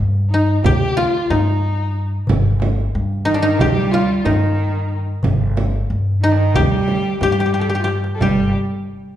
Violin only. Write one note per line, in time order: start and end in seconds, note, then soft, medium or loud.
0.30 0.61 D#4 medium
0.64 0.99 G4 medium
0.97 1.32 F4 medium
1.30 2.04 D#4 medium
3.27 3.61 D#4 medium
3.59 3.93 G4 medium
3.92 4.26 F4 medium
4.24 4.99 D#4 medium
6.24 6.33 D#4 medium
6.32 6.39 D4 medium
6.38 6.58 D#4 medium
6.57 7.21 G4 medium
7.22 7.61 G4 medium
7.59 7.72 A4 medium
7.70 7.82 G4 medium
7.80 7.90 F4 soft
7.89 7.97 G4 medium
8.15 8.24 A4 medium
8.22 8.54 G4 medium